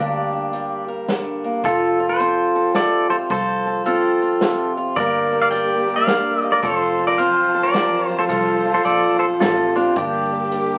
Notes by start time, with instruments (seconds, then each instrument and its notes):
Already playing: fingered electric bass D2, steel-string acoustic guitar G2 A#3
0.00 steel-string acoustic guitar D4, pedal steel guitar D4 G4
0.33 steel-string acoustic guitar D4
0.53 steel-string acoustic guitar G3, closed hi-hat
0.88 steel-string acoustic guitar A#4
1.08 steel-string acoustic guitar D3 D4, snare, closed hi-hat
1.44 steel-string acoustic guitar A#3
1.64 fingered electric bass F1, steel-string acoustic guitar F3 F4, pedal steel guitar F4 A4, kick, closed hi-hat
2.00 steel-string acoustic guitar F4
2.09 pedal steel guitar A4 C5
2.19 steel-string acoustic guitar C4, closed hi-hat
2.56 steel-string acoustic guitar A4
2.74 steel-string acoustic guitar C3 A4, pedal steel guitar A4 D5, snare, closed hi-hat
3.10 steel-string acoustic guitar F4, pedal steel guitar A4 C5
3.30 fingered electric bass C2, steel-string acoustic guitar F3 A4, pedal steel guitar A4 C5, kick, closed hi-hat
3.67 steel-string acoustic guitar A4
3.86 steel-string acoustic guitar C4, pedal steel guitar F4 A4, closed hi-hat
4.22 steel-string acoustic guitar F4
4.41 steel-string acoustic guitar C3 F4, snare, closed hi-hat
4.77 steel-string acoustic guitar F4
4.96 fingered electric bass G1, steel-string acoustic guitar G2 G3 A#3 D4 A#4, string section A#3 D4 G4, pedal steel guitar A#4 D5, kick, closed hi-hat
5.32 steel-string acoustic guitar D4
5.42 pedal steel guitar D5 F5
5.51 steel-string acoustic guitar G3, pedal steel guitar D5 G5, closed hi-hat
5.87 steel-string acoustic guitar A#4
5.96 pedal steel guitar D5 F5
6.07 steel-string acoustic guitar D3 D4, snare, closed hi-hat
6.41 steel-string acoustic guitar A#3, pedal steel guitar D#5
6.52 pedal steel guitar A#4 D5
6.62 fingered electric bass F1, string section F3 F4 C5 A5, steel-string acoustic guitar F3 C4 F4 A4, pedal steel guitar A4 C5, kick, closed hi-hat
6.99 steel-string acoustic guitar A4
7.07 pedal steel guitar A#4 D5
7.18 steel-string acoustic guitar C4, pedal steel guitar C5 F5, closed hi-hat
7.54 steel-string acoustic guitar A4
7.63 pedal steel guitar A#4 D5
7.74 steel-string acoustic guitar C3, snare, closed hi-hat
8.10 steel-string acoustic guitar F4
8.19 pedal steel guitar A4 C5
8.29 fingered electric bass C2, steel-string acoustic guitar F3 F4, pedal steel guitar F4 A4, kick, closed hi-hat
8.65 steel-string acoustic guitar F4
8.74 pedal steel guitar A4 C5
8.85 fingered electric bass A#1, steel-string acoustic guitar C4, pedal steel guitar A4 D5, closed hi-hat
9.19 pedal steel guitar A4 C5, steel-string acoustic guitar A4
9.40 fingered electric bass A1, steel-string acoustic guitar C3 F4, pedal steel guitar F4 A4, snare, closed hi-hat
9.76 steel-string acoustic guitar C4, pedal steel guitar D4 F4
9.96 fingered electric bass G1, steel-string acoustic guitar G2 D4, string section A#3 D4 G4, pedal steel guitar D4 G4, kick, closed hi-hat
10.32 steel-string acoustic guitar D4
10.52 steel-string acoustic guitar G3, closed hi-hat